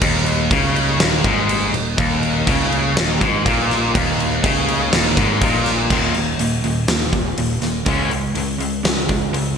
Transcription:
0.00 0.48 D#1 medium
0.00 0.50 D#2 loud
0.00 5.87 G3 medium
0.00 5.86 A#3 medium
0.00 5.86 D#4 medium
0.00 kick loud
0.00 crash medium
0.26 crash medium
0.51 0.97 C#2 medium
0.51 1.00 C#3 loud
0.51 kick loud
0.51 crash medium
0.76 crash medium
0.98 1.22 D#1 medium
0.98 1.24 D#2 loud
0.98 snare loud
0.98 crash medium
1.24 1.70 G#1 medium
1.24 1.73 G#2 loud
1.24 kick loud
1.24 crash medium
1.49 crash medium
1.72 1.96 D#1 medium
1.72 1.93 D#2 medium
1.72 crash medium
1.97 2.44 D#1 medium
1.97 2.46 D#2 loud
1.97 kick loud
1.97 crash medium
2.23 crash medium
2.47 2.93 C#2 loud
2.47 2.95 C#3 loud
2.47 kick loud
2.47 crash medium
2.72 crash medium
2.95 3.19 D#1 medium
2.95 3.20 D#2 loud
2.95 snare loud
2.95 crash medium
3.21 3.44 G#1 medium
3.21 3.45 G#2 loud
3.21 kick medium
3.21 crash medium
3.46 3.91 A#1 medium
3.46 3.94 A#2 medium
3.46 kick loud
3.46 crash medium
3.71 snare soft
3.71 crash medium
3.95 4.40 D#1 medium
3.95 4.43 D#2 loud
3.95 kick loud
3.95 crash medium
4.20 crash medium
4.43 4.89 C#2 loud
4.43 4.91 C#3 loud
4.43 kick loud
4.43 crash medium
4.68 crash medium
4.92 5.16 D#1 loud
4.92 5.16 D#2 loud
4.92 snare loud
4.92 crash medium
5.17 5.40 G#1 medium
5.17 5.41 G#2 loud
5.17 kick loud
5.17 crash medium
5.41 5.87 A#1 medium
5.41 5.90 A#2 loud
5.41 kick loud
5.41 crash medium
5.66 snare soft
5.66 crash medium
5.90 6.34 D#1 medium
5.90 6.14 D#2 medium
5.90 6.14 A#2 medium
5.90 6.14 D#3 medium
5.90 kick loud
5.90 crash loud
6.14 6.38 D#2 medium
6.14 6.38 A#2 medium
6.14 open hi-hat soft
6.38 6.60 D#1 medium
6.38 6.62 D#2 medium
6.38 6.62 A#2 medium
6.38 open hi-hat medium
6.63 6.85 D#1 medium
6.63 6.86 D#2 medium
6.63 6.87 A#2 medium
6.63 open hi-hat medium
6.88 7.10 D#2 medium
6.88 7.11 D#2 medium
6.88 7.11 A#2 medium
6.88 snare loud
6.88 open hi-hat medium
7.12 7.34 D#1 medium
7.12 7.35 D#2 medium
7.12 7.35 A#2 medium
7.12 kick medium
7.12 open hi-hat soft
7.37 7.59 D#1 medium
7.37 7.60 D#2 medium
7.37 7.60 A#2 medium
7.37 open hi-hat medium
7.60 7.83 D#1 medium
7.60 7.85 D#2 medium
7.60 7.85 A#2 medium
7.60 snare soft
7.60 open hi-hat soft
7.86 8.29 C#2 medium
7.86 8.10 C#3 medium
7.86 8.10 G#3 medium
7.86 8.11 C#4 medium
7.86 kick loud
7.86 open hi-hat medium
8.11 8.34 C#3 medium
8.11 8.34 G#3 medium
8.11 open hi-hat medium
8.35 8.57 C#2 medium
8.35 8.58 C#3 medium
8.35 8.59 G#3 medium
8.35 open hi-hat medium
8.59 8.81 C#2 medium
8.59 8.82 C#3 medium
8.59 8.83 G#3 medium
8.59 open hi-hat medium
8.83 9.05 C#2 medium
8.83 9.07 C#3 medium
8.83 9.07 G#3 medium
8.83 snare loud
8.83 open hi-hat medium
9.09 9.31 C#2 medium
9.09 9.31 C#3 medium
9.09 9.31 G#3 medium
9.09 kick medium
9.09 open hi-hat medium
9.32 9.58 C#2 medium
9.32 9.55 C#3 medium
9.32 9.56 G#3 medium
9.32 open hi-hat medium

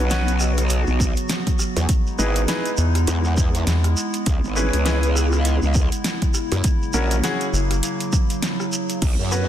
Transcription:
0.00 0.85 B1 loud
0.00 1.85 C#3 medium
0.00 1.85 F#3 medium
0.00 1.87 B3 medium
0.00 1.87 F#4 medium
0.10 0.31 B3 loud
0.10 0.31 C#4 medium
0.10 0.31 F#4 medium
0.10 0.31 B4 loud
0.10 snare loud
0.10 closed hi-hat medium
0.10 shekere medium
0.28 closed hi-hat soft
0.28 shekere soft
0.40 cross-stick soft
0.40 shekere medium
0.58 cross-stick medium
0.58 closed hi-hat soft
0.58 shekere soft
0.69 closed hi-hat medium
0.69 shekere medium
0.87 1.15 B1 loud
0.87 shekere soft
1.00 kick loud
1.00 shekere loud
1.16 closed hi-hat soft
1.16 shekere soft
1.29 snare loud
1.29 closed hi-hat medium
1.29 shekere soft
1.47 kick medium
1.47 closed hi-hat soft
1.47 shekere soft
1.59 cross-stick soft
1.59 shekere medium
1.77 1.87 E2 loud
1.77 closed hi-hat soft
1.77 shekere soft
1.89 6.60 G#3 medium
1.89 6.60 B3 medium
1.89 4.24 D#4 medium
1.89 8.98 E4 medium
1.89 kick loud
1.89 closed hi-hat medium
1.89 shekere medium
2.07 shekere soft
2.18 2.47 G#1 loud
2.18 2.39 D#4 medium
2.18 2.39 E4 medium
2.18 2.39 G#4 medium
2.18 2.39 B4 medium
2.18 shekere loud
2.36 closed hi-hat soft
2.36 shekere soft
2.48 2.69 D#4 loud
2.48 2.69 E4 medium
2.48 2.69 G#4 medium
2.48 2.69 B4 loud
2.48 snare loud
2.48 closed hi-hat medium
2.48 shekere soft
2.65 closed hi-hat soft
2.65 shekere soft
2.78 3.06 E2 loud
2.78 shekere medium
2.95 cross-stick medium
2.95 closed hi-hat soft
2.95 shekere soft
3.07 3.65 E2 loud
3.07 closed hi-hat medium
3.07 shekere medium
3.24 shekere soft
3.37 kick loud
3.37 shekere medium
3.55 closed hi-hat soft
3.55 shekere soft
3.67 3.95 E2 medium
3.67 snare loud
3.67 closed hi-hat medium
3.67 shekere soft
3.84 cross-stick medium
3.84 closed hi-hat soft
3.84 shekere soft
3.97 shekere medium
4.14 closed hi-hat soft
4.14 shekere soft
4.26 4.41 C#2 medium
4.26 9.48 C#3 medium
4.26 kick loud
4.26 closed hi-hat medium
4.26 shekere soft
4.44 4.71 G#1 loud
4.44 shekere soft
4.56 4.83 C#4 medium
4.56 4.83 E4 medium
4.56 4.83 G#4 medium
4.56 4.83 B4 loud
4.56 shekere medium
4.73 5.60 C#2 loud
4.73 closed hi-hat medium
4.73 shekere soft
4.86 5.06 C#4 loud
4.86 5.06 E4 medium
4.86 5.06 G#4 medium
4.86 5.06 B4 loud
4.86 snare loud
4.86 closed hi-hat medium
4.86 shekere soft
5.03 closed hi-hat soft
5.03 shekere soft
5.15 cross-stick soft
5.15 shekere medium
5.32 cross-stick medium
5.32 shekere soft
5.45 closed hi-hat medium
5.45 shekere soft
5.62 5.90 C#2 loud
5.62 shekere soft
5.74 kick loud
5.74 shekere medium
5.92 closed hi-hat soft
5.92 shekere soft
6.04 snare loud
6.04 closed hi-hat medium
6.04 shekere medium
6.22 kick medium
6.22 closed hi-hat soft
6.22 shekere soft
6.34 cross-stick soft
6.34 shekere medium
6.52 6.62 F#2 loud
6.52 closed hi-hat soft
6.52 shekere soft
6.64 9.48 F#3 medium
6.64 9.00 A#3 medium
6.64 kick loud
6.64 closed hi-hat medium
6.64 shekere medium
6.82 shekere soft
6.93 7.22 A#1 loud
6.93 7.14 C#4 medium
6.93 7.14 E4 medium
6.93 7.14 F#4 medium
6.93 7.14 A#4 medium
6.93 shekere medium
7.11 closed hi-hat medium
7.11 shekere soft
7.24 7.44 C#4 loud
7.24 7.44 E4 medium
7.24 7.44 F#4 medium
7.24 7.44 G#4 loud
7.24 snare loud
7.24 closed hi-hat medium
7.24 shekere soft
7.41 closed hi-hat soft
7.41 shekere soft
7.53 7.81 F#1 loud
7.53 shekere medium
7.71 cross-stick medium
7.71 closed hi-hat medium
7.71 shekere soft
7.83 closed hi-hat medium
7.83 shekere medium
8.00 closed hi-hat soft
8.00 shekere soft
8.13 kick loud
8.13 shekere medium
8.30 closed hi-hat soft
8.30 shekere soft
8.42 snare loud
8.42 closed hi-hat medium
8.42 shekere soft
8.60 cross-stick medium
8.60 shekere soft
8.73 shekere medium
8.89 closed hi-hat soft
8.89 shekere soft
9.02 9.17 B1 medium
9.02 9.48 B3 medium
9.02 9.48 F#4 medium
9.02 kick loud
9.02 closed hi-hat medium
9.02 crash medium
9.02 shekere soft
9.19 9.46 F#2 loud
9.19 shekere soft
9.32 9.48 B3 medium
9.32 9.48 C#4 medium
9.32 9.48 F#4 medium
9.32 9.48 B4 loud
9.32 shekere loud

